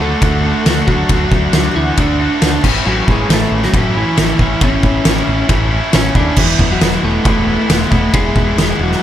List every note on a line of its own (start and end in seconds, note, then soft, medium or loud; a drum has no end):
0.00 0.15 D2 loud
0.00 0.20 D3 loud
0.00 0.22 A3 medium
0.00 0.84 A3 medium
0.00 0.21 D4 loud
0.00 0.22 F#4 loud
0.00 0.91 A4 loud
0.21 0.51 D2 loud
0.21 0.63 D3 medium
0.21 0.45 A3 medium
0.21 0.43 D4 medium
0.21 0.42 F#4 medium
0.21 kick loud
0.21 ride bell medium
0.43 0.65 A3 medium
0.43 0.65 D4 medium
0.43 0.66 F#4 medium
0.64 0.81 D2 medium
0.64 1.08 D3 medium
0.64 0.89 A3 medium
0.64 0.87 D4 medium
0.64 0.86 F#4 medium
0.64 snare loud
0.64 ride bell medium
0.87 1.02 D2 medium
0.87 1.71 F#3 medium
0.87 1.10 A3 medium
0.87 1.10 D4 medium
0.87 1.76 F#4 loud
0.87 1.11 F#4 medium
0.87 kick medium
1.09 1.24 D2 loud
1.09 1.52 D3 medium
1.09 1.54 A3 loud
1.09 1.54 D4 loud
1.09 1.54 F#4 loud
1.09 kick loud
1.09 ride bell medium
1.32 1.46 D2 medium
1.32 kick medium
1.53 1.68 D2 medium
1.53 1.96 D3 loud
1.53 1.98 A3 medium
1.53 1.98 D4 loud
1.53 1.98 F#4 loud
1.53 snare loud
1.53 ride bell medium
1.76 1.90 D2 loud
1.76 1.97 E3 medium
1.76 1.96 E4 loud
1.97 2.27 D2 loud
1.97 2.40 D3 medium
1.97 2.22 A3 medium
1.97 2.60 D4 medium
1.97 2.20 D4 medium
1.97 2.18 F#4 loud
1.97 2.60 D5 medium
1.97 kick loud
1.97 ride bell medium
2.20 2.42 A3 medium
2.20 2.42 D4 medium
2.20 2.42 F#4 medium
2.41 2.57 D2 loud
2.41 2.62 D3 medium
2.41 2.64 A3 medium
2.41 2.63 D4 medium
2.41 2.63 F#4 medium
2.41 snare loud
2.41 ride bell medium
2.63 2.78 A1 loud
2.63 2.85 A2 medium
2.63 2.85 E3 medium
2.63 2.86 A3 medium
2.63 2.86 C#4 medium
2.63 2.87 E4 medium
2.63 kick loud
2.63 crash loud
2.85 3.00 A1 medium
2.85 3.29 A2 medium
2.85 3.30 E3 loud
2.85 3.06 F#3 medium
2.85 3.30 A3 loud
2.85 3.31 C#4 loud
2.85 3.31 E4 loud
2.85 3.10 F#4 loud
3.08 3.22 A1 medium
3.08 3.29 G#3 medium
3.08 kick medium
3.12 3.30 G#4 loud
3.29 3.44 A1 medium
3.29 3.95 A2 loud
3.29 3.73 E3 loud
3.29 3.74 A3 loud
3.29 3.61 A3 medium
3.29 3.75 C#4 loud
3.29 3.76 E4 loud
3.29 snare loud
3.29 ride bell medium
3.33 3.64 A4 loud
3.51 3.66 A1 medium
3.63 3.94 F#3 medium
3.63 3.97 F#4 loud
3.63 snare soft
3.73 4.03 A1 loud
3.73 4.17 E3 medium
3.73 3.96 A3 loud
3.73 3.95 C#4 medium
3.73 3.94 E4 loud
3.73 kick loud
3.73 ride bell medium
3.95 4.17 E3 medium
3.95 4.17 A3 medium
3.95 4.17 C#4 medium
3.95 4.19 E4 medium
3.95 4.18 E4 medium
4.17 4.32 A1 loud
4.17 4.61 E3 medium
4.17 4.39 E3 medium
4.17 4.40 A3 medium
4.17 4.39 C#4 medium
4.17 4.39 E4 medium
4.17 4.40 E4 medium
4.17 snare loud
4.17 ride bell medium
4.39 4.54 A1 medium
4.39 4.61 E3 medium
4.39 4.61 A3 medium
4.39 4.61 C#4 medium
4.39 4.62 E4 medium
4.39 4.63 E4 medium
4.39 kick medium
4.61 4.76 A1 loud
4.61 5.03 A2 loud
4.61 5.05 E3 loud
4.61 5.04 A3 loud
4.61 5.05 C#4 loud
4.61 5.47 C#4 medium
4.61 5.06 E4 loud
4.61 5.47 C#5 medium
4.61 kick loud
4.61 ride bell medium
4.83 4.98 A1 medium
4.83 kick medium
5.05 5.20 A1 medium
5.05 5.71 A2 medium
5.05 5.47 E3 medium
5.05 5.48 A3 medium
5.05 5.49 C#4 loud
5.05 5.50 E4 loud
5.05 snare loud
5.05 ride bell medium
5.28 5.42 A1 medium
5.48 5.79 A1 loud
5.48 5.91 E3 medium
5.48 5.71 A3 medium
5.48 5.70 C#4 medium
5.48 5.70 E4 medium
5.48 kick loud
5.48 ride bell medium
5.70 5.92 A3 medium
5.70 5.92 C#4 medium
5.70 5.94 E4 medium
5.92 6.09 A1 medium
5.92 6.36 E3 medium
5.92 6.16 A3 medium
5.92 6.15 C#4 medium
5.92 6.16 C#4 medium
5.92 6.14 E4 medium
5.92 6.15 C#5 medium
5.92 snare loud
5.92 ride bell medium
6.14 6.30 D#2 medium
6.14 6.37 A3 medium
6.14 6.36 C#4 medium
6.14 6.39 D4 medium
6.14 6.38 E4 medium
6.14 6.36 D5 medium
6.14 kick medium
6.36 6.52 E1 loud
6.36 6.80 E3 loud
6.36 6.69 E3 medium
6.36 6.82 G#3 loud
6.36 6.82 B3 loud
6.36 6.83 E4 loud
6.36 6.72 E4 medium
6.36 kick loud
6.36 crash loud
6.59 6.74 E1 medium
6.59 kick medium
6.72 7.02 F#3 medium
6.72 7.05 F#4 medium
6.81 6.96 E1 loud
6.81 7.24 E3 medium
6.81 7.24 G#3 loud
6.81 7.25 B3 loud
6.81 7.26 E4 medium
6.81 snare loud
6.81 ride bell medium
7.03 7.18 E1 medium
7.03 8.10 A3 medium
7.03 8.14 A4 medium
7.25 7.55 E1 loud
7.25 7.67 E3 medium
7.25 7.48 G#3 medium
7.25 7.47 B3 medium
7.25 7.46 E4 loud
7.25 kick loud
7.25 ride bell medium
7.47 7.68 G#3 medium
7.47 7.69 B3 medium
7.47 7.70 E4 medium
7.68 7.84 E1 medium
7.68 8.11 E3 medium
7.68 7.91 G#3 medium
7.68 7.90 B3 medium
7.68 7.89 E4 medium
7.68 snare loud
7.68 ride bell medium
7.90 8.06 E1 medium
7.90 8.12 G#3 medium
7.90 8.13 B3 medium
7.90 8.13 E4 medium
7.90 kick medium
8.12 8.29 E1 loud
8.12 8.56 E3 medium
8.12 8.56 G#3 medium
8.12 8.77 G#3 medium
8.12 8.57 B3 loud
8.12 8.58 E4 loud
8.12 8.82 G#4 loud
8.12 kick loud
8.12 ride bell medium
8.36 8.51 E1 medium
8.36 kick medium
8.56 8.72 E1 medium
8.56 9.01 E3 medium
8.56 9.01 G#3 loud
8.56 9.03 B3 medium
8.56 9.03 E4 medium
8.56 snare loud
8.56 ride bell medium
8.79 8.94 E1 medium
8.83 9.02 F#3 medium
8.83 9.03 F#4 medium
8.92 snare soft